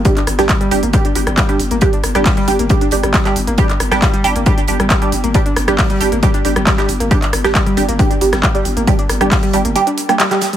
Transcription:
<<
  \new Staff \with { instrumentName = "Synth stab" } { \time 4/4 \key g \minor \tempo 4 = 136 <g d' g'>16 r8 <g d' g'>16 r8 <g d' g'>16 r16 <g d' g'>16 r16 <g d' g'>16 r8 <g d' g'>16 r8 | <g d' g'>16 r8 <g d' g'>16 r8 <g d' g'>16 r16 <g d' g'>16 r16 <g d' g'>16 r8 <g d' g'>16 r8 | <g d' g'>16 r8 <g d' g'>16 r8 <g d' g'>16 r16 <g d' g'>16 r16 <g d' g'>16 r8 <g d' g'>16 r8 | <g d' g'>16 r8 <g d' g'>16 r8 <g d' g'>16 r16 <g d' g'>16 r16 <g d' g'>16 r8 <g d' g'>16 r8 |
<g d' g'>16 r8 <g d' g'>16 r8 <g d' g'>16 r16 <g d' g'>16 r16 <g d' g'>16 r8 <g d' g'>16 r8 | <g d' g'>16 r8 <g d' g'>16 r8 <g d' g'>16 r16 <g d' g'>16 r8 <g d' g'>16 r16 <g d' g'>16 r8 | }
  \new Staff \with { instrumentName = "Synth arpeggio sound" } { \clef bass \time 4/4 \key g \minor g16 d'16 r16 g16 g16 g16 r16 bes16 g16 d'16 r16 g16 g16 g16 r16 bes16 | g16 d'16 r16 g16 g16 g16 r16 bes16 g16 d'16 r16 g16 g16 g16 r16 bes16 | g16 d'16 r16 g16 g16 g16 r16 bes16 g16 d'16 r16 g16 g16 g16 r16 bes16 | g16 d'16 r16 g16 g16 g16 r16 bes16 g16 d'16 r16 g16 g16 g16 r16 bes16 |
g16 d'16 r16 g16 g16 g16 r16 bes16 g16 d'16 r16 g16 g16 g16 r16 bes16 | g16 d'16 r16 g16 g16 g16 r16 bes16 g16 d'16 r16 bes16 g16 g16 g16 g16 | }
  \new Staff \with { instrumentName = "808-style bass" } { \clef bass \time 4/4 \key g \minor r8 g,,16 g,,16 r8 g,,16 g,,16 r8 g,,16 g,,16 r8 g,,16 g,,16 | r8 g,,16 g,,16 r8 g,,16 g,,16 r8 g,,16 g,,16 r8 g,,16 g,,16 | r8 g,,16 g,,16 r8 g,,16 g,,16 r8 g,,16 g,,16 r8 g,,16 g,,16 | r8 g,,16 g,,16 r8 g,,16 g,,16 r8 g,,16 g,,16 r8 g,,16 g,,16 |
r8 g,,16 g,,16 r8 g,,16 g,,16 r8 g,,16 g,,16 r8 g,,16 g,,16 | r8 g,,16 g,,16 r8 g,,16 g,,16 r2 | }
  \new DrumStaff \with { instrumentName = "Drums" } \drummode { \time 4/4 <hh bd>16 <hc hh>16 <hh hho ss>16 <hh ss sn>16 <hc hh bd sn>16 hh16 <hh hho>16 hh16 <hh bd>16 hh16 <hh hho>16 <hh ss>16 <hc hh bd sn>16 hh16 <hh hho>16 hh16 | <hh bd>16 hh16 <hh hho ss>16 <hh ss>16 <hc hh hho bd sn>16 hh16 <hh hho>16 hh16 <hh bd>16 hh16 <hh hho>16 <hh ss>16 <hc hh bd sn>16 <hc hh sn>16 <hh hho>16 hh16 | <hh bd>16 <hc hh>16 <hh hho ss>16 <hh ss sn>16 <hc hh bd sn>16 hh16 <hh hho>16 hh16 <hh bd>16 hh16 <hh hho>16 <hh ss>16 <hc hh bd sn>16 hh16 <hh hho>16 hh16 | <hh bd>16 hh16 <hh hho ss>16 <hh ss>16 <hc hh hho bd sn>16 hh16 <hh hho>16 hh16 <hh bd>16 hh16 <hh hho>16 <hh ss>16 <hc hh bd sn>16 <hc hh sn>16 <hh hho>16 hh16 |
<hh bd>16 <hc hh>16 <hh hho ss>16 <hh ss sn>16 <hc hh bd sn>16 hh16 <hh hho>16 hh16 <hh bd>16 hh16 <hh hho>16 <hh ss sn>16 <hc hh bd>16 hh16 <hh hho>16 hh16 | <hh bd>16 hh16 <hh hho ss>16 <hh ss>16 <hc hh hho bd sn>16 hh16 <hh hho>16 hh16 hh16 hh16 <hh hho>16 <hh ss>16 <hc hh sn>16 <hc hh sn>16 <hh hho sn>16 hh16 | }
>>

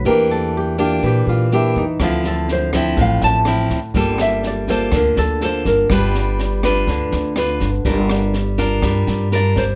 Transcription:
<<
  \new Staff \with { instrumentName = "Nylon-string guitar" } { \time 4/4 \key g \dorian \tempo 4 = 123 bes'8 a'8 g'8 f'8 g'8 f'8 e'8 ees'8 | f'8 a'8 c''8 e''8 f''8 a''8 r4 | r8 e''8 d''8 c''8 bes'8 a'8 c''8 bes'8 | b'2. r4 |
r2. d''8 c''8 | }
  \new Staff \with { instrumentName = "Nylon-string guitar" } { \time 4/4 \key g \dorian << { <bes d' g'>4. <bes d' g'>4. <bes d' g'>8 r8 | <f c' e'>4. <f c' e'>4. <f c' e'>8 r8 | <bes f' a'>4. <bes f' a'>4. <bes f' a'>4 | <d' f' b'>4. <d' f' b'>4. <d' f' b'>8 r8 |
<d' f' bes'>4 r8 <d' f' bes'>4. <d' f' bes'>8 r8 | } \\ { e2 e2 | d2 a,2 | g2 d2 | g2 d2 |
g2 g2 | } >> }
  \new Staff \with { instrumentName = "Upright bass" } { \clef bass \time 4/4 \key g \dorian e,2 bes,8 bes,4 e,8 | d,2 a,,8 a,,4 d,8 | g,,2 d,8 d,4 g,,8 | g,,2 d,8 d,4 g,,8 |
g,,2 g,8 g,4 g,,8 | }
  \new DrumStaff \with { instrumentName = "Drums" } \drummode { \time 4/4 r4 r4 r4 r4 | <bd ss sn>8 sn8 sn8 <bd ss sn>8 <bd sn>8 sn8 <ss sn>8 <bd sn>8 | <bd sn>8 <ss sn>8 sn8 <bd sn>8 <bd ss sn>8 sn8 sn8 <bd sn>8 | <bd ss sn>8 sn8 sn8 <bd ss sn>8 <bd sn>8 sn8 <ss sn>8 <bd sn>8 |
<bd sn>8 <ss sn>8 sn8 <bd sn>8 <bd ss sn>8 sn8 sn8 <bd sn>8 | }
>>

